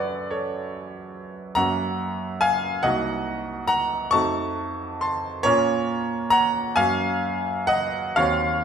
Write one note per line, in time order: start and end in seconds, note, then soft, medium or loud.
0.00 1.53 F#2 medium
0.00 1.53 A3 medium
0.00 1.53 C#4 medium
0.00 1.54 F#4 medium
0.00 0.30 B4 medium
0.00 0.31 C#5 medium
0.00 0.32 D5 medium
0.00 1.56 F#5 loud
0.31 0.72 A4 soft
0.31 0.74 C#5 medium
1.55 2.80 F#2 medium
1.55 2.80 A#3 medium
1.55 2.81 C#4 medium
1.55 2.81 F#4 medium
1.55 2.38 F#5 medium
1.55 2.41 A#5 loud
2.41 2.82 F5 medium
2.41 2.84 G#5 loud
2.83 4.10 C2 medium
2.83 4.10 A#3 medium
2.83 4.11 D#4 medium
2.83 4.11 F#4 medium
2.83 3.66 D#5 medium
2.83 3.67 F#5 loud
3.67 4.10 F#5 medium
3.67 4.13 A#5 loud
4.11 5.41 F2 medium
4.11 5.41 A3 medium
4.11 5.42 D#4 medium
4.11 5.42 F#4 medium
4.11 4.98 A5 medium
4.11 5.01 C#6 loud
5.01 5.43 A5 medium
5.01 5.45 C6 medium
5.43 6.72 A#2 medium
5.43 6.73 A#3 medium
5.43 6.73 C#4 medium
5.43 6.73 F4 medium
5.43 6.28 A#4 medium
5.43 6.32 C#5 loud
6.30 6.74 F#5 medium
6.30 6.76 A#5 loud
6.76 8.15 F#2 medium
6.76 8.15 A#3 medium
6.76 8.16 C#4 medium
6.76 8.16 F#4 medium
6.76 7.66 F5 loud
6.76 7.69 G#5 loud
7.67 8.15 D#5 medium
7.67 8.18 F#5 loud
8.16 8.64 D#2 medium
8.16 8.64 C4 medium
8.16 8.64 F#4 medium
8.16 8.64 C#5 medium
8.16 8.64 F5 loud